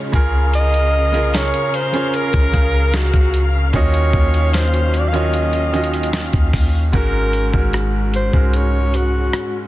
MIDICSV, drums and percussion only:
0, 0, Header, 1, 2, 480
1, 0, Start_track
1, 0, Tempo, 800000
1, 322, Time_signature, 4, 2, 24, 8
1, 5804, End_track
2, 0, Start_track
2, 0, Title_t, "Drums"
2, 81, Note_on_c, 9, 36, 107
2, 82, Note_on_c, 9, 42, 68
2, 141, Note_off_c, 9, 36, 0
2, 142, Note_off_c, 9, 42, 0
2, 321, Note_on_c, 9, 42, 76
2, 381, Note_off_c, 9, 42, 0
2, 444, Note_on_c, 9, 42, 54
2, 504, Note_off_c, 9, 42, 0
2, 685, Note_on_c, 9, 42, 57
2, 745, Note_off_c, 9, 42, 0
2, 802, Note_on_c, 9, 42, 73
2, 807, Note_on_c, 9, 38, 115
2, 862, Note_off_c, 9, 42, 0
2, 867, Note_off_c, 9, 38, 0
2, 923, Note_on_c, 9, 42, 50
2, 983, Note_off_c, 9, 42, 0
2, 1043, Note_on_c, 9, 42, 69
2, 1103, Note_off_c, 9, 42, 0
2, 1162, Note_on_c, 9, 42, 48
2, 1222, Note_off_c, 9, 42, 0
2, 1282, Note_on_c, 9, 42, 69
2, 1342, Note_off_c, 9, 42, 0
2, 1398, Note_on_c, 9, 42, 47
2, 1403, Note_on_c, 9, 36, 94
2, 1458, Note_off_c, 9, 42, 0
2, 1463, Note_off_c, 9, 36, 0
2, 1522, Note_on_c, 9, 36, 97
2, 1523, Note_on_c, 9, 42, 69
2, 1582, Note_off_c, 9, 36, 0
2, 1583, Note_off_c, 9, 42, 0
2, 1762, Note_on_c, 9, 37, 97
2, 1762, Note_on_c, 9, 38, 113
2, 1762, Note_on_c, 9, 42, 76
2, 1822, Note_off_c, 9, 37, 0
2, 1822, Note_off_c, 9, 38, 0
2, 1822, Note_off_c, 9, 42, 0
2, 1882, Note_on_c, 9, 36, 91
2, 1882, Note_on_c, 9, 42, 51
2, 1942, Note_off_c, 9, 36, 0
2, 1942, Note_off_c, 9, 42, 0
2, 2002, Note_on_c, 9, 42, 75
2, 2062, Note_off_c, 9, 42, 0
2, 2240, Note_on_c, 9, 42, 77
2, 2242, Note_on_c, 9, 36, 115
2, 2300, Note_off_c, 9, 42, 0
2, 2302, Note_off_c, 9, 36, 0
2, 2363, Note_on_c, 9, 42, 55
2, 2423, Note_off_c, 9, 42, 0
2, 2481, Note_on_c, 9, 36, 90
2, 2541, Note_off_c, 9, 36, 0
2, 2604, Note_on_c, 9, 42, 53
2, 2664, Note_off_c, 9, 42, 0
2, 2721, Note_on_c, 9, 42, 69
2, 2725, Note_on_c, 9, 38, 121
2, 2781, Note_off_c, 9, 42, 0
2, 2785, Note_off_c, 9, 38, 0
2, 2842, Note_on_c, 9, 42, 51
2, 2902, Note_off_c, 9, 42, 0
2, 2962, Note_on_c, 9, 42, 70
2, 3022, Note_off_c, 9, 42, 0
2, 3083, Note_on_c, 9, 42, 49
2, 3143, Note_off_c, 9, 42, 0
2, 3201, Note_on_c, 9, 42, 68
2, 3261, Note_off_c, 9, 42, 0
2, 3318, Note_on_c, 9, 42, 47
2, 3378, Note_off_c, 9, 42, 0
2, 3442, Note_on_c, 9, 42, 44
2, 3502, Note_off_c, 9, 42, 0
2, 3502, Note_on_c, 9, 42, 50
2, 3561, Note_off_c, 9, 42, 0
2, 3561, Note_on_c, 9, 42, 61
2, 3620, Note_off_c, 9, 42, 0
2, 3620, Note_on_c, 9, 42, 69
2, 3680, Note_off_c, 9, 42, 0
2, 3680, Note_on_c, 9, 37, 97
2, 3680, Note_on_c, 9, 38, 120
2, 3680, Note_on_c, 9, 42, 74
2, 3740, Note_off_c, 9, 37, 0
2, 3740, Note_off_c, 9, 38, 0
2, 3740, Note_off_c, 9, 42, 0
2, 3799, Note_on_c, 9, 42, 52
2, 3801, Note_on_c, 9, 36, 100
2, 3859, Note_off_c, 9, 42, 0
2, 3861, Note_off_c, 9, 36, 0
2, 3921, Note_on_c, 9, 36, 94
2, 3921, Note_on_c, 9, 46, 74
2, 3981, Note_off_c, 9, 36, 0
2, 3981, Note_off_c, 9, 46, 0
2, 4160, Note_on_c, 9, 42, 72
2, 4161, Note_on_c, 9, 36, 113
2, 4220, Note_off_c, 9, 42, 0
2, 4221, Note_off_c, 9, 36, 0
2, 4399, Note_on_c, 9, 42, 71
2, 4459, Note_off_c, 9, 42, 0
2, 4521, Note_on_c, 9, 36, 90
2, 4581, Note_off_c, 9, 36, 0
2, 4640, Note_on_c, 9, 42, 68
2, 4645, Note_on_c, 9, 37, 110
2, 4700, Note_off_c, 9, 42, 0
2, 4705, Note_off_c, 9, 37, 0
2, 4881, Note_on_c, 9, 42, 67
2, 4941, Note_off_c, 9, 42, 0
2, 5001, Note_on_c, 9, 36, 89
2, 5061, Note_off_c, 9, 36, 0
2, 5121, Note_on_c, 9, 42, 64
2, 5181, Note_off_c, 9, 42, 0
2, 5363, Note_on_c, 9, 42, 69
2, 5423, Note_off_c, 9, 42, 0
2, 5601, Note_on_c, 9, 37, 106
2, 5601, Note_on_c, 9, 42, 68
2, 5661, Note_off_c, 9, 37, 0
2, 5661, Note_off_c, 9, 42, 0
2, 5804, End_track
0, 0, End_of_file